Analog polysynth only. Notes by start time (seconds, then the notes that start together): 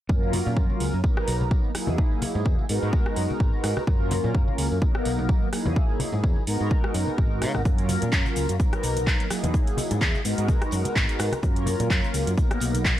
0.09 F#3 A#3 C#4 F4 A#4
1.03 F#3 A#3 B3 D#4 A#4
1.74 F#3 A#3 D#4 E4 G#4
2.69 G#3 B3 D#4 F#4 A#4
3.87 F#3 A#3 C#4 F4 A#4
4.81 F#3 A#3 B3 D#4 A#4
5.52 F#3 A#3 D#4 E4 G#4
6.47 G#3 B3 D#4 F#4 A#4
7.65 F#3 A#3 C#4 F4 A#4
8.59 F#3 A#3 B3 D#4 A#4
9.30 F#3 A#3 D#4 E4 G#4
10.24 G#3 B3 D#4 F#4 A#4
11.42 F#3 A#3 C#4 F4 A#4
12.37 F#3 A#3 B3 D#4 A#4